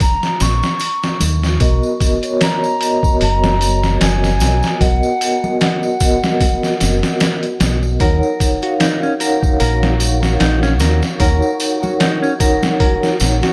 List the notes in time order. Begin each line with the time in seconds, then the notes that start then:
0.00 A#5, kick, open hi-hat, tambourine
0.23 snare, tambourine
0.40 A#1 C#6, snare, open hi-hat, tambourine
0.63 snare, tambourine
0.80 open hi-hat, tambourine
1.03 snare, tambourine
1.20 D#2, open hi-hat, tambourine, low conga
1.43 snare, tambourine
1.60 B1 B3 F#4 A#4 D#5, kick, open hi-hat, tambourine
1.83 tambourine
2.00 kick, open hi-hat, tambourine
2.21 B3 F#4 A#4 C#5, closed hi-hat, tambourine
2.41 A#5, snare, open hi-hat, tambourine
2.64 tambourine
2.80 B3 F#4 A#4 D#5, open hi-hat, tambourine
3.03 kick, tambourine
3.21 F#1 A#5, open hi-hat, tambourine
3.44 snare, tambourine, low conga
3.61 open hi-hat, tambourine
3.83 snare, tambourine
4.01 F#1 G#5, snare, open hi-hat, tambourine
4.24 snare, tambourine
4.40 B1, snare, open hi-hat, tambourine
4.63 snare, tambourine
4.80 B1 B3 F#4 A#4 D#5 F#5, kick, open hi-hat, tambourine
5.03 tambourine
5.21 open hi-hat, tambourine
5.42 B3 F#4 A#4 D#5, tambourine, low conga
5.61 F#5, snare, open hi-hat, tambourine
5.83 tambourine
5.99 B3 F#4 A#4 D#5, kick, open hi-hat, tambourine
6.23 snare, tambourine, low conga
6.41 kick, open hi-hat, tambourine
6.63 snare, tambourine
6.80 F#1, snare, open hi-hat, tambourine
7.03 snare, tambourine
7.20 snare, open hi-hat, tambourine
7.43 closed hi-hat, tambourine
7.60 B1, snare, open hi-hat, tambourine, low conga
7.83 tambourine
8.00 D#2 D#4 F#4 A#4 C#5 F#5, kick, open hi-hat, tambourine
8.23 tambourine
8.40 kick, open hi-hat, tambourine
8.62 D#4 F#4 A#4 C#5 F5, closed hi-hat, tambourine
8.80 D#4, snare, open hi-hat, tambourine
9.03 C#4, tambourine
9.19 D#4 A#4 C#5 F#5, open hi-hat, tambourine
9.43 kick, tambourine
9.60 A#1 A#4, open hi-hat, tambourine
9.83 snare, tambourine, low conga
10.00 open hi-hat, tambourine
10.23 F#4, snare, tambourine
10.40 A#1 D#4, snare, open hi-hat, tambourine
10.63 C#4, snare, tambourine
10.80 D#2 A#4, snare, open hi-hat, tambourine
11.02 snare, tambourine
11.20 D#2 D#4 A#4 C#5 F#5, kick, open hi-hat, tambourine
11.42 tambourine
11.60 open hi-hat, tambourine
11.82 D#4 F#4 A#4 C#5 F#5, tambourine, low conga
12.00 D#4, snare, open hi-hat, tambourine
12.22 C#4, tambourine
12.39 D#4 A#4 C#5 F#5, kick, open hi-hat, tambourine
12.63 snare, tambourine, low conga
12.80 A#4, kick, open hi-hat, tambourine
13.03 snare, tambourine
13.20 A#1, snare, open hi-hat, tambourine
13.43 F#4, snare, tambourine